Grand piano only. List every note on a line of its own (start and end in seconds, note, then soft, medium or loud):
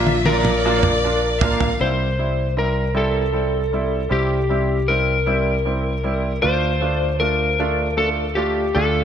0.00 0.14 A#3 medium
0.00 0.14 D4 medium
0.00 0.14 F4 medium
0.27 0.52 A#3 medium
0.27 0.53 D4 medium
0.27 0.53 F4 medium
0.65 0.91 A#3 medium
0.65 0.91 D4 medium
0.65 0.91 F4 loud
1.04 1.30 D4 medium
1.04 1.30 F4 medium
1.42 1.68 A#3 medium
1.42 1.68 D4 medium
1.42 1.68 F4 medium
1.80 2.06 G3 medium
1.80 2.06 C4 medium
1.80 2.07 E4 medium
2.19 2.45 G3 medium
2.19 2.45 C4 soft
2.19 2.45 E4 medium
2.57 2.83 G3 medium
2.57 2.83 C4 soft
2.57 2.83 E4 medium
2.94 3.21 G3 medium
2.94 3.21 C4 medium
2.94 3.22 E4 medium
3.33 3.60 G3 medium
3.33 3.60 C4 soft
3.33 3.60 E4 medium
3.72 3.99 G3 medium
3.72 3.99 C4 medium
3.72 4.00 E4 medium
4.09 4.37 G3 medium
4.09 4.37 C4 medium
4.09 4.37 E4 medium
4.49 4.76 G3 medium
4.49 4.76 C4 medium
4.49 4.77 E4 medium
4.88 5.15 G3 medium
4.88 5.15 C4 medium
4.88 5.15 E4 medium
5.26 5.53 G3 medium
5.26 5.54 C4 medium
5.26 5.54 E4 medium
5.65 5.92 G3 medium
5.65 5.92 C4 medium
5.65 5.92 E4 medium
6.04 6.30 G3 medium
6.04 6.31 C4 medium
6.04 6.31 E4 medium
6.42 6.69 A3 medium
6.42 6.69 D4 medium
6.42 6.69 F4 medium
6.81 7.08 A3 medium
6.81 7.08 D4 medium
6.81 7.08 F4 medium
7.20 7.47 A3 medium
7.20 7.47 D4 medium
7.20 7.47 F4 medium
7.59 7.86 A3 medium
7.59 7.86 D4 medium
7.59 7.86 F4 medium
7.97 8.24 A3 medium
7.97 8.24 D4 medium
7.97 8.24 F4 medium
8.36 8.63 A3 medium
8.36 8.63 D4 medium
8.36 8.63 F4 medium
8.75 9.01 A3 medium
8.75 9.01 D4 medium
8.75 9.02 F4 medium